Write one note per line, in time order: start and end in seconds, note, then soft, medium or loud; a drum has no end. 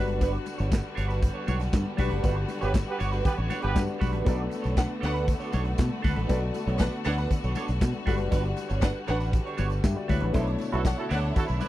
0.00 0.36 G1 medium
0.00 10.30 D3 medium
0.00 1.94 G3 medium
0.00 4.22 G3 medium
0.00 10.30 B3 medium
0.00 1.94 D4 medium
0.00 1.94 F#4 medium
0.00 1.95 F#4 medium
0.00 1.95 B4 medium
0.07 0.19 D4 soft
0.07 0.21 F#4 medium
0.07 0.20 B4 medium
0.07 closed hi-hat medium
0.21 0.36 D4 loud
0.21 0.34 F#4 loud
0.21 0.32 B4 loud
0.21 kick loud
0.21 closed hi-hat medium
0.21 tambourine medium
0.21 muted conga medium
0.33 muted clean electric guitar stroke medium
0.33 closed hi-hat soft
0.46 muted clean electric guitar stroke medium
0.46 closed hi-hat medium
0.46 tambourine medium
0.46 muted conga soft
0.58 0.80 G1 loud
0.58 0.69 D4 medium
0.58 0.69 F#4 medium
0.58 0.70 C#5 medium
0.58 closed hi-hat soft
0.58 tambourine soft
0.70 muted clean electric guitar stroke soft
0.70 kick loud
0.70 snare loud
0.70 tambourine loud
0.70 high conga medium
0.74 clap loud
0.83 muted clean electric guitar stroke soft
0.95 1.28 G1 medium
0.95 1.09 D4 medium
0.95 1.08 F#4 medium
0.95 1.08 C#5 loud
0.95 closed hi-hat medium
0.95 tambourine soft
1.08 1.20 D4 medium
1.08 1.21 F#4 medium
1.08 1.21 B4 medium
1.08 closed hi-hat soft
1.08 tambourine soft
1.21 muted clean electric guitar stroke medium
1.21 kick loud
1.21 closed hi-hat medium
1.21 tambourine medium
1.34 1.46 D4 medium
1.34 1.47 F#4 medium
1.34 1.46 C#5 medium
1.47 1.68 B1 medium
1.47 1.63 D4 medium
1.47 1.61 F#4 medium
1.47 1.60 C#5 medium
1.47 closed hi-hat medium
1.47 tambourine medium
1.47 muted conga medium
1.60 muted clean electric guitar stroke soft
1.60 snare soft
1.60 closed hi-hat medium
1.60 tambourine soft
1.73 1.83 G2 loud
1.73 muted clean electric guitar stroke soft
1.73 kick loud
1.73 snare loud
1.73 clap medium
1.73 tambourine loud
1.73 high conga medium
1.86 muted clean electric guitar stroke medium
1.97 2.09 B1 medium
1.97 3.71 G3 medium
1.97 2.10 D4 loud
1.97 3.72 D4 medium
1.97 4.24 F#4 medium
1.97 2.10 F#4 loud
1.97 3.73 F#4 medium
1.97 2.09 B4 medium
1.97 3.73 B4 medium
1.97 kick loud
1.97 open hi-hat medium
1.97 tambourine soft
1.97 high conga medium
2.10 2.21 F#1 loud
2.10 2.22 D4 medium
2.10 2.23 F#4 medium
2.10 2.22 B4 medium
2.10 closed hi-hat soft
2.23 2.44 G1 loud
2.23 2.38 D4 loud
2.23 2.37 F#4 loud
2.23 2.35 B4 loud
2.23 kick loud
2.23 closed hi-hat medium
2.23 tambourine medium
2.23 muted conga medium
2.37 muted clean electric guitar stroke medium
2.48 muted clean electric guitar stroke soft
2.48 closed hi-hat medium
2.48 tambourine medium
2.48 muted conga soft
2.61 2.82 G1 medium
2.61 2.70 B3 medium
2.61 2.73 D4 medium
2.61 2.73 F#4 medium
2.61 2.70 G4 medium
2.61 2.70 B4 medium
2.61 2.73 C#5 medium
2.61 closed hi-hat medium
2.61 tambourine soft
2.74 muted clean electric guitar stroke soft
2.74 kick loud
2.74 snare loud
2.74 clap loud
2.74 tambourine loud
2.74 high conga medium
2.86 2.96 B3 medium
2.86 2.96 G4 medium
2.86 2.96 B4 medium
2.86 muted clean electric guitar stroke soft
2.98 3.20 G1 medium
2.98 3.13 D4 medium
2.98 3.12 F#4 loud
2.98 3.12 C#5 loud
2.98 closed hi-hat medium
2.98 tambourine medium
3.12 3.22 D4 medium
3.12 3.23 F#4 medium
3.12 3.24 B4 medium
3.12 closed hi-hat soft
3.12 tambourine soft
3.23 3.33 B3 loud
3.23 3.33 G4 medium
3.23 3.33 B4 loud
3.23 muted clean electric guitar stroke soft
3.23 kick loud
3.23 closed hi-hat medium
3.23 tambourine medium
3.23 low conga medium
3.37 3.48 A1 medium
3.37 3.48 D4 medium
3.37 3.49 F#4 medium
3.37 3.49 C#5 medium
3.50 3.65 D4 medium
3.50 3.63 F#4 medium
3.50 3.62 C#5 loud
3.50 closed hi-hat medium
3.50 tambourine medium
3.50 muted conga medium
3.62 3.74 G1 medium
3.62 3.79 B3 loud
3.62 3.79 G4 loud
3.62 3.79 B4 loud
3.62 muted clean electric guitar stroke medium
3.62 closed hi-hat medium
3.73 3.86 G2 loud
3.73 4.26 G3 medium
3.73 4.26 D4 medium
3.73 4.24 F#4 medium
3.73 4.26 B4 medium
3.73 muted clean electric guitar stroke soft
3.73 kick loud
3.73 snare loud
3.73 clap medium
3.73 tambourine loud
3.73 high conga medium
3.87 muted clean electric guitar stroke soft
3.87 closed hi-hat soft
3.99 4.15 B1 medium
3.99 4.13 D4 medium
3.99 4.12 F#4 medium
3.99 4.11 B4 loud
3.99 kick loud
3.99 open hi-hat medium
3.99 tambourine medium
3.99 high conga loud
4.13 4.25 A1 medium
4.13 4.24 D4 medium
4.13 4.25 F#4 medium
4.13 4.25 B4 medium
4.13 closed hi-hat medium
4.25 4.47 B1 loud
4.25 8.03 A3 medium
4.25 6.24 B3 medium
4.25 4.41 D4 loud
4.25 6.25 F#4 medium
4.25 10.31 F#4 medium
4.25 4.38 A4 loud
4.25 6.25 A4 medium
4.25 4.36 B4 loud
4.25 6.26 D5 medium
4.25 kick loud
4.25 closed hi-hat medium
4.25 tambourine medium
4.25 muted conga medium
4.38 muted clean electric guitar stroke soft
4.49 muted clean electric guitar stroke soft
4.49 closed hi-hat medium
4.49 tambourine medium
4.49 muted conga soft
4.62 4.85 B1 loud
4.62 4.75 D4 medium
4.62 4.75 A4 medium
4.62 4.75 C#5 medium
4.62 closed hi-hat soft
4.62 tambourine soft
4.76 4.88 D4 medium
4.76 4.88 B4 loud
4.76 4.88 F#5 loud
4.76 muted clean electric guitar stroke soft
4.76 kick loud
4.76 snare loud
4.76 clap medium
4.76 tambourine loud
4.76 high conga medium
4.89 muted clean electric guitar stroke soft
5.00 5.33 D2 medium
5.00 5.14 D4 medium
5.00 5.25 D4 loud
5.00 5.13 A4 medium
5.00 5.25 B4 loud
5.00 5.13 C#5 loud
5.00 5.25 F#5 loud
5.00 closed hi-hat medium
5.00 tambourine medium
5.00 muted conga soft
5.14 5.26 D4 medium
5.14 5.27 A4 medium
5.14 5.26 B4 medium
5.14 closed hi-hat medium
5.28 kick loud
5.28 closed hi-hat medium
5.28 tambourine medium
5.40 5.51 D4 medium
5.40 5.52 A4 medium
5.40 5.52 C#5 medium
5.40 closed hi-hat soft
5.40 tambourine soft
5.52 5.74 B1 medium
5.52 5.68 D4 medium
5.52 5.66 A4 medium
5.52 5.65 C#5 medium
5.52 closed hi-hat medium
5.52 tambourine medium
5.52 muted conga medium
5.65 muted clean electric guitar stroke medium
5.65 closed hi-hat medium
5.77 5.89 B2 loud
5.77 muted clean electric guitar stroke soft
5.77 kick loud
5.77 snare loud
5.77 clap loud
5.77 tambourine loud
5.77 high conga medium
5.91 muted clean electric guitar stroke soft
6.02 6.14 D2 medium
6.02 6.16 D4 medium
6.02 6.16 A4 medium
6.02 6.15 B4 loud
6.02 kick loud
6.02 open hi-hat medium
6.02 tambourine medium
6.02 high conga medium
6.16 6.27 A1 medium
6.16 6.27 D4 medium
6.16 6.28 A4 medium
6.16 6.28 B4 medium
6.16 closed hi-hat medium
6.28 6.50 B1 loud
6.28 8.02 B3 medium
6.28 6.44 D4 medium
6.28 8.03 F#4 medium
6.28 6.41 A4 loud
6.28 8.03 A4 medium
6.28 6.40 B4 loud
6.28 8.04 D5 loud
6.28 kick loud
6.28 closed hi-hat medium
6.28 tambourine medium
6.28 muted conga medium
6.41 muted clean electric guitar stroke soft
6.54 muted clean electric guitar stroke soft
6.54 closed hi-hat medium
6.54 tambourine medium
6.54 muted conga soft
6.67 6.87 B1 loud
6.67 6.78 D4 medium
6.67 6.79 A4 medium
6.67 6.79 C#5 medium
6.67 closed hi-hat soft
6.79 6.90 D4 loud
6.79 6.90 B4 loud
6.79 6.90 F#5 loud
6.79 muted clean electric guitar stroke soft
6.79 kick loud
6.79 snare loud
6.79 clap medium
6.79 tambourine loud
6.79 high conga medium
6.93 muted clean electric guitar stroke soft
6.93 closed hi-hat soft
7.04 7.26 D2 medium
7.04 7.19 D4 loud
7.04 7.27 D4 loud
7.04 7.18 A4 loud
7.04 7.26 B4 medium
7.04 7.18 C#5 loud
7.04 7.26 F#5 loud
7.04 closed hi-hat medium
7.04 tambourine medium
7.04 muted conga soft
7.18 7.30 D4 medium
7.18 7.30 A4 medium
7.18 7.30 B4 medium
7.18 closed hi-hat soft
7.18 tambourine soft
7.31 muted clean electric guitar stroke soft
7.31 kick loud
7.31 closed hi-hat medium
7.31 tambourine medium
7.31 low conga medium
7.44 7.54 B1 medium
7.44 7.55 D4 medium
7.44 7.56 A4 medium
7.44 7.55 C#5 medium
7.44 closed hi-hat soft
7.44 tambourine soft
7.55 7.71 D4 loud
7.55 7.69 A4 medium
7.55 7.68 C#5 medium
7.55 closed hi-hat medium
7.55 tambourine medium
7.55 muted conga medium
7.68 7.79 B1 medium
7.68 muted clean electric guitar stroke soft
7.68 snare soft
7.68 closed hi-hat medium
7.68 tambourine soft
7.81 7.92 B2 loud
7.81 kick loud
7.81 snare loud
7.81 clap medium
7.81 tambourine loud
7.81 high conga medium
7.93 muted clean electric guitar stroke medium
7.93 closed hi-hat soft
8.05 8.20 G1 medium
8.05 10.05 G3 medium
8.05 10.33 G3 medium
8.05 8.21 D4 medium
8.05 9.80 D4 medium
8.05 8.19 F#4 medium
8.05 9.81 F#4 medium
8.05 8.13 A4 medium
8.05 8.17 B4 loud
8.05 kick loud
8.05 open hi-hat medium
8.05 tambourine medium
8.05 high conga medium
8.15 9.85 B4 medium
8.15 muted clean electric guitar stroke soft
8.15 closed hi-hat medium
8.20 8.30 F#1 medium
8.31 8.52 G1 loud
8.31 8.46 D4 loud
8.31 8.44 F#4 loud
8.31 8.43 B4 loud
8.31 kick loud
8.31 closed hi-hat medium
8.31 tambourine medium
8.31 muted conga medium
8.44 muted clean electric guitar stroke medium
8.44 closed hi-hat soft
8.57 muted clean electric guitar stroke soft
8.57 closed hi-hat medium
8.57 tambourine medium
8.57 muted conga soft
8.69 8.90 G1 loud
8.69 8.80 D4 medium
8.69 8.81 F#4 medium
8.69 8.81 C#5 medium
8.69 closed hi-hat soft
8.69 tambourine soft
8.81 8.93 D4 loud
8.81 8.93 B4 loud
8.81 8.93 F#5 loud
8.81 muted clean electric guitar stroke soft
8.81 kick loud
8.81 snare loud
8.81 clap medium
8.81 tambourine loud
8.81 high conga medium
8.94 muted clean electric guitar stroke medium
9.07 9.38 A1 medium
9.07 9.20 D4 medium
9.07 9.30 D4 loud
9.07 9.19 F#4 medium
9.07 9.29 B4 loud
9.07 9.19 C#5 medium
9.07 9.30 F#5 loud
9.07 closed hi-hat medium
9.07 tambourine soft
9.07 muted conga soft
9.19 9.31 D4 medium
9.19 9.32 F#4 medium
9.19 9.32 B4 medium
9.19 closed hi-hat soft
9.19 tambourine soft
9.33 muted clean electric guitar stroke soft
9.33 kick loud
9.33 closed hi-hat medium
9.33 tambourine medium
9.45 9.56 D4 medium
9.45 9.57 F#4 medium
9.45 9.57 C#5 medium
9.45 closed hi-hat soft
9.57 9.79 G1 loud
9.57 9.73 D4 medium
9.57 9.71 F#4 medium
9.57 9.71 C#5 medium
9.57 closed hi-hat medium
9.57 tambourine medium
9.57 muted conga medium
9.70 muted clean electric guitar stroke soft
9.70 closed hi-hat medium
9.70 tambourine soft
9.83 9.94 G2 loud
9.83 9.96 G4 medium
9.83 9.96 E5 medium
9.83 muted clean electric guitar stroke medium
9.83 kick loud
9.83 snare loud
9.83 clap medium
9.83 tambourine loud
9.83 high conga medium
9.96 10.08 F#4 medium
9.96 10.08 D5 medium
9.96 muted clean electric guitar stroke soft
10.08 10.20 D2 medium
10.08 10.22 D4 medium
10.08 10.21 E4 medium
10.08 10.22 F#4 medium
10.08 10.20 B4 medium
10.08 10.21 C#5 medium
10.08 kick loud
10.08 open hi-hat medium
10.08 tambourine medium
10.08 high conga medium
10.20 10.32 A1 loud
10.20 10.32 D4 medium
10.20 10.33 D4 medium
10.20 10.34 F#4 medium
10.20 10.45 B4 medium
10.20 10.33 B4 medium
10.20 closed hi-hat medium
10.32 10.55 B1 loud
10.32 11.68 B2 medium
10.32 11.68 D3 medium
10.32 11.68 A3 medium
10.32 11.68 D4 medium
10.32 10.49 D4 loud
10.32 11.68 E4 medium
10.32 10.47 E4 loud
10.32 10.46 A4 loud
10.32 10.41 C5 medium
10.32 11.68 C#5 medium
10.32 kick loud
10.32 closed hi-hat medium
10.32 tambourine medium
10.32 muted conga medium
10.41 11.68 C#5 medium
10.47 muted clean electric guitar stroke soft
10.47 closed hi-hat soft
10.59 muted clean electric guitar stroke soft
10.59 closed hi-hat medium
10.59 tambourine medium
10.59 muted conga soft
10.72 10.93 B1 loud
10.72 10.83 D4 medium
10.72 10.81 E4 medium
10.72 10.84 E4 medium
10.72 10.81 F#4 medium
10.72 10.81 A4 loud
10.72 10.84 B4 medium
10.72 closed hi-hat medium
10.84 10.96 D4 medium
10.84 10.96 C#5 loud
10.84 10.96 F#5 loud
10.84 muted clean electric guitar stroke soft
10.84 kick loud
10.84 snare loud
10.84 clap medium
10.84 tambourine loud
10.84 high conga medium
10.97 11.06 E4 medium
10.97 11.06 F#4 medium
10.97 11.06 A4 medium
10.97 muted clean electric guitar stroke soft
10.97 closed hi-hat soft
11.09 11.31 D2 medium
11.09 11.22 D4 medium
11.09 11.32 D4 loud
11.09 11.21 E4 loud
11.09 11.20 B4 loud
11.09 11.33 C#5 medium
11.09 11.32 F#5 loud
11.09 closed hi-hat medium
11.09 tambourine medium
11.09 muted conga soft
11.21 11.33 D4 medium
11.21 11.34 E4 medium
11.21 11.34 A4 medium
11.21 closed hi-hat soft
11.34 11.44 E4 medium
11.34 11.45 F#4 medium
11.34 11.45 A4 loud
11.34 muted clean electric guitar stroke soft
11.34 kick loud
11.34 closed hi-hat medium
11.34 tambourine medium
11.34 low conga medium
11.47 11.59 B1 medium
11.47 11.58 D4 medium
11.47 11.59 E4 medium
11.47 11.60 B4 medium
11.47 closed hi-hat soft
11.47 tambourine soft
11.59 11.68 D4 medium
11.59 11.68 E4 medium
11.59 11.68 B4 medium
11.59 closed hi-hat medium
11.59 tambourine medium
11.59 muted conga medium